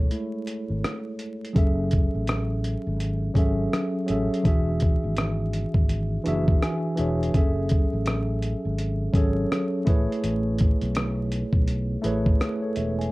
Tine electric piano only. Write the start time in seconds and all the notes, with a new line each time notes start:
Already playing: A3 E4 G#4 A4 C#5
0.11 G#3 A3 E4
1.53 F#3 C#4 G#4 A4
1.58 E5
3.34 F#3 C#4 G#4 A4
3.39 E5
4.06 F#3 C#4 G#4 A4
4.11 E5
4.43 E3 D4 F#4 G#4
4.47 E5
6.24 E3 D4 F#4 G#4
6.28 E5
6.62 G#5
6.96 E3 D4 F#4 G#4 E5
7.01 C#5
7.33 F#3 C#4 G#4 A4
7.37 E5
9.13 F#3 C#4 G#4 A4
9.18 C#5
9.85 A3 E4 G#4 B4
9.89 C#5
12.02 A3 E4 G#4 B4
12.06 C#5
12.40 G#4 B4
12.62 A4 C#5
12.77 C#5 E5
12.99 E5 G#5